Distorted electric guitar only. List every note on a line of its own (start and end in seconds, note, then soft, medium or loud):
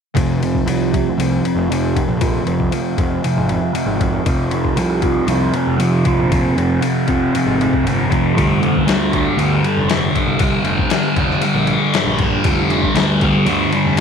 0.14 0.67 F2 medium
0.14 0.42 C3 medium
0.14 0.40 F3 medium
0.41 0.67 C3 medium
0.41 0.69 F3 medium
0.67 0.96 F2 medium
0.67 0.93 C3 medium
0.67 0.93 F3 medium
0.93 1.18 F2 medium
0.93 1.19 C3 medium
0.93 1.20 F3 medium
1.18 1.69 F2 medium
1.18 1.45 C3 medium
1.18 1.43 F3 medium
1.44 1.69 C3 medium
1.44 1.71 F3 medium
1.69 2.19 F2 medium
1.69 1.96 C3 medium
1.69 1.94 F3 medium
1.95 2.20 C3 soft
1.95 2.21 F3 medium
2.20 2.70 F2 medium
2.20 2.46 C3 medium
2.20 2.44 F3 medium
2.44 2.71 C3 medium
2.44 2.73 F3 medium
2.70 2.99 F2 medium
2.70 2.98 C3 medium
2.70 2.97 F3 medium
2.97 3.22 F2 medium
2.97 3.23 C3 medium
2.97 3.25 F3 medium
3.23 3.73 F2 medium
3.23 3.51 C3 medium
3.23 3.49 F3 medium
3.50 3.74 C3 medium
3.50 3.76 F3 medium
3.74 4.25 F2 medium
3.74 4.02 C3 medium
3.74 4.00 F3 medium
4.00 4.26 C3 soft
4.00 4.28 F3 medium
4.26 4.76 F2 medium
4.26 4.53 C3 medium
4.26 4.52 F3 medium
4.52 4.77 C3 medium
4.52 4.79 F3 medium
4.77 5.04 F2 medium
4.77 5.02 C3 medium
4.77 5.02 F3 medium
5.02 5.25 F2 medium
5.02 5.27 C3 medium
5.02 5.28 F3 medium
5.26 5.77 F2 medium
5.26 5.54 C3 medium
5.26 5.52 F3 medium
5.53 5.79 C3 medium
5.53 5.80 F3 medium
5.78 6.29 F2 medium
5.78 6.06 C3 medium
5.78 6.04 F3 loud
6.05 6.30 C3 soft
6.05 6.32 F3 medium
6.31 6.80 F2 medium
6.31 6.57 C3 medium
6.31 6.55 F3 medium
6.56 6.80 C3 medium
6.56 6.82 F3 medium
6.81 7.08 F2 medium
6.81 7.07 C3 medium
6.81 7.06 F3 medium
7.07 7.33 F2 medium
7.07 7.34 C3 medium
7.07 7.35 F3 medium
7.34 7.84 F2 medium
7.34 7.60 C3 medium
7.34 7.57 F3 medium
7.59 7.85 C3 medium
7.59 7.86 F3 medium
7.85 8.35 F2 medium
7.85 8.10 C3 medium
7.85 8.08 F3 medium
8.10 8.36 C3 soft
8.10 8.35 F3 medium
8.35 8.85 G2 medium
8.35 8.62 D3 medium
8.35 8.61 G3 medium
8.61 8.86 D3 medium
8.61 8.88 G3 medium
8.86 9.13 G2 medium
8.86 9.12 D3 medium
8.86 9.12 G3 medium
9.12 9.36 G2 medium
9.12 9.37 D3 medium
9.12 9.40 G3 medium
9.37 9.87 G2 medium
9.37 9.65 D3 medium
9.37 9.63 G3 medium
9.64 9.89 D3 medium
9.64 9.91 G3 medium
9.88 10.39 G2 medium
9.88 10.17 D3 loud
9.88 10.16 G3 medium
10.16 10.41 D3 medium
10.16 10.43 G3 medium
10.40 10.91 G2 medium
10.40 10.67 D3 medium
10.40 10.65 G3 medium
10.65 10.92 D3 medium
10.65 10.95 G3 medium
10.92 11.19 G2 medium
10.92 11.17 D3 medium
10.92 11.17 G3 medium
11.17 11.41 G2 medium
11.17 11.43 D3 medium
11.17 11.45 G3 medium
11.43 11.93 G2 medium
11.43 11.71 D3 medium
11.43 11.69 G3 medium
11.69 11.95 D3 medium
11.69 11.96 G3 medium
11.94 12.44 G2 medium
11.94 12.22 D3 medium
11.94 12.20 G3 medium
12.21 12.46 D3 medium
12.21 12.48 G3 medium
12.46 12.96 G2 medium
12.46 12.73 D3 medium
12.46 12.71 G3 medium
12.71 12.98 D3 medium
12.71 13.00 G3 medium
12.98 13.25 G2 medium
12.98 13.23 D3 medium
12.98 13.22 G3 medium
13.23 13.45 G2 medium
13.23 13.47 D3 medium
13.23 13.48 G3 medium
13.47 13.97 G2 medium
13.47 13.74 D3 medium
13.47 13.72 G3 medium
13.73 13.98 D3 medium
13.73 13.99 G3 medium